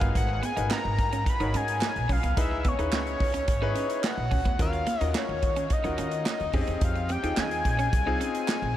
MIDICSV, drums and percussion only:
0, 0, Header, 1, 2, 480
1, 0, Start_track
1, 0, Tempo, 555556
1, 131, Time_signature, 4, 2, 24, 8
1, 7576, End_track
2, 0, Start_track
2, 0, Title_t, "Drums"
2, 12, Note_on_c, 9, 36, 107
2, 14, Note_on_c, 9, 42, 68
2, 99, Note_off_c, 9, 36, 0
2, 100, Note_off_c, 9, 42, 0
2, 132, Note_on_c, 9, 36, 112
2, 135, Note_on_c, 9, 42, 107
2, 219, Note_off_c, 9, 36, 0
2, 221, Note_off_c, 9, 42, 0
2, 373, Note_on_c, 9, 42, 67
2, 459, Note_off_c, 9, 42, 0
2, 493, Note_on_c, 9, 42, 54
2, 579, Note_off_c, 9, 42, 0
2, 611, Note_on_c, 9, 39, 98
2, 612, Note_on_c, 9, 38, 116
2, 697, Note_off_c, 9, 39, 0
2, 698, Note_off_c, 9, 38, 0
2, 851, Note_on_c, 9, 42, 75
2, 852, Note_on_c, 9, 36, 88
2, 937, Note_off_c, 9, 42, 0
2, 938, Note_off_c, 9, 36, 0
2, 972, Note_on_c, 9, 42, 54
2, 1058, Note_off_c, 9, 42, 0
2, 1091, Note_on_c, 9, 36, 115
2, 1093, Note_on_c, 9, 42, 96
2, 1178, Note_off_c, 9, 36, 0
2, 1180, Note_off_c, 9, 42, 0
2, 1212, Note_on_c, 9, 42, 39
2, 1299, Note_off_c, 9, 42, 0
2, 1329, Note_on_c, 9, 42, 84
2, 1416, Note_off_c, 9, 42, 0
2, 1451, Note_on_c, 9, 42, 57
2, 1537, Note_off_c, 9, 42, 0
2, 1566, Note_on_c, 9, 39, 86
2, 1572, Note_on_c, 9, 38, 119
2, 1652, Note_off_c, 9, 39, 0
2, 1659, Note_off_c, 9, 38, 0
2, 1694, Note_on_c, 9, 42, 30
2, 1780, Note_off_c, 9, 42, 0
2, 1809, Note_on_c, 9, 36, 86
2, 1809, Note_on_c, 9, 46, 56
2, 1895, Note_off_c, 9, 36, 0
2, 1895, Note_off_c, 9, 46, 0
2, 1932, Note_on_c, 9, 42, 66
2, 2019, Note_off_c, 9, 42, 0
2, 2049, Note_on_c, 9, 42, 110
2, 2050, Note_on_c, 9, 36, 127
2, 2136, Note_off_c, 9, 36, 0
2, 2136, Note_off_c, 9, 42, 0
2, 2286, Note_on_c, 9, 42, 77
2, 2289, Note_on_c, 9, 36, 94
2, 2373, Note_off_c, 9, 42, 0
2, 2376, Note_off_c, 9, 36, 0
2, 2411, Note_on_c, 9, 42, 42
2, 2497, Note_off_c, 9, 42, 0
2, 2528, Note_on_c, 9, 39, 102
2, 2529, Note_on_c, 9, 38, 119
2, 2614, Note_off_c, 9, 39, 0
2, 2616, Note_off_c, 9, 38, 0
2, 2650, Note_on_c, 9, 42, 38
2, 2736, Note_off_c, 9, 42, 0
2, 2767, Note_on_c, 9, 46, 75
2, 2769, Note_on_c, 9, 36, 96
2, 2853, Note_off_c, 9, 46, 0
2, 2855, Note_off_c, 9, 36, 0
2, 2886, Note_on_c, 9, 42, 58
2, 2973, Note_off_c, 9, 42, 0
2, 3005, Note_on_c, 9, 42, 103
2, 3008, Note_on_c, 9, 36, 111
2, 3091, Note_off_c, 9, 42, 0
2, 3094, Note_off_c, 9, 36, 0
2, 3244, Note_on_c, 9, 42, 81
2, 3331, Note_off_c, 9, 42, 0
2, 3367, Note_on_c, 9, 42, 62
2, 3453, Note_off_c, 9, 42, 0
2, 3490, Note_on_c, 9, 38, 118
2, 3490, Note_on_c, 9, 39, 98
2, 3576, Note_off_c, 9, 39, 0
2, 3577, Note_off_c, 9, 38, 0
2, 3727, Note_on_c, 9, 46, 61
2, 3728, Note_on_c, 9, 36, 93
2, 3813, Note_off_c, 9, 46, 0
2, 3814, Note_off_c, 9, 36, 0
2, 3850, Note_on_c, 9, 36, 99
2, 3851, Note_on_c, 9, 42, 66
2, 3936, Note_off_c, 9, 36, 0
2, 3937, Note_off_c, 9, 42, 0
2, 3968, Note_on_c, 9, 42, 105
2, 3969, Note_on_c, 9, 36, 122
2, 4054, Note_off_c, 9, 42, 0
2, 4055, Note_off_c, 9, 36, 0
2, 4088, Note_on_c, 9, 42, 34
2, 4175, Note_off_c, 9, 42, 0
2, 4204, Note_on_c, 9, 42, 81
2, 4291, Note_off_c, 9, 42, 0
2, 4327, Note_on_c, 9, 42, 48
2, 4414, Note_off_c, 9, 42, 0
2, 4447, Note_on_c, 9, 38, 111
2, 4450, Note_on_c, 9, 39, 112
2, 4533, Note_off_c, 9, 38, 0
2, 4537, Note_off_c, 9, 39, 0
2, 4688, Note_on_c, 9, 42, 87
2, 4690, Note_on_c, 9, 36, 94
2, 4774, Note_off_c, 9, 42, 0
2, 4776, Note_off_c, 9, 36, 0
2, 4806, Note_on_c, 9, 42, 57
2, 4892, Note_off_c, 9, 42, 0
2, 4925, Note_on_c, 9, 42, 90
2, 4929, Note_on_c, 9, 36, 110
2, 5012, Note_off_c, 9, 42, 0
2, 5015, Note_off_c, 9, 36, 0
2, 5047, Note_on_c, 9, 42, 38
2, 5134, Note_off_c, 9, 42, 0
2, 5166, Note_on_c, 9, 42, 79
2, 5253, Note_off_c, 9, 42, 0
2, 5283, Note_on_c, 9, 42, 54
2, 5369, Note_off_c, 9, 42, 0
2, 5407, Note_on_c, 9, 38, 119
2, 5411, Note_on_c, 9, 39, 98
2, 5494, Note_off_c, 9, 38, 0
2, 5497, Note_off_c, 9, 39, 0
2, 5528, Note_on_c, 9, 42, 31
2, 5614, Note_off_c, 9, 42, 0
2, 5643, Note_on_c, 9, 46, 57
2, 5647, Note_on_c, 9, 36, 92
2, 5729, Note_off_c, 9, 46, 0
2, 5734, Note_off_c, 9, 36, 0
2, 5767, Note_on_c, 9, 42, 67
2, 5853, Note_off_c, 9, 42, 0
2, 5886, Note_on_c, 9, 42, 111
2, 5889, Note_on_c, 9, 36, 127
2, 5973, Note_off_c, 9, 42, 0
2, 5976, Note_off_c, 9, 36, 0
2, 6008, Note_on_c, 9, 42, 34
2, 6094, Note_off_c, 9, 42, 0
2, 6126, Note_on_c, 9, 42, 71
2, 6212, Note_off_c, 9, 42, 0
2, 6251, Note_on_c, 9, 42, 54
2, 6337, Note_off_c, 9, 42, 0
2, 6369, Note_on_c, 9, 38, 118
2, 6370, Note_on_c, 9, 39, 100
2, 6456, Note_off_c, 9, 38, 0
2, 6456, Note_off_c, 9, 39, 0
2, 6490, Note_on_c, 9, 42, 43
2, 6576, Note_off_c, 9, 42, 0
2, 6611, Note_on_c, 9, 36, 88
2, 6611, Note_on_c, 9, 42, 82
2, 6697, Note_off_c, 9, 36, 0
2, 6698, Note_off_c, 9, 42, 0
2, 6732, Note_on_c, 9, 42, 55
2, 6818, Note_off_c, 9, 42, 0
2, 6850, Note_on_c, 9, 42, 95
2, 6851, Note_on_c, 9, 36, 123
2, 6937, Note_off_c, 9, 36, 0
2, 6937, Note_off_c, 9, 42, 0
2, 7092, Note_on_c, 9, 42, 82
2, 7179, Note_off_c, 9, 42, 0
2, 7211, Note_on_c, 9, 42, 55
2, 7298, Note_off_c, 9, 42, 0
2, 7329, Note_on_c, 9, 39, 102
2, 7332, Note_on_c, 9, 38, 127
2, 7415, Note_off_c, 9, 39, 0
2, 7418, Note_off_c, 9, 38, 0
2, 7576, End_track
0, 0, End_of_file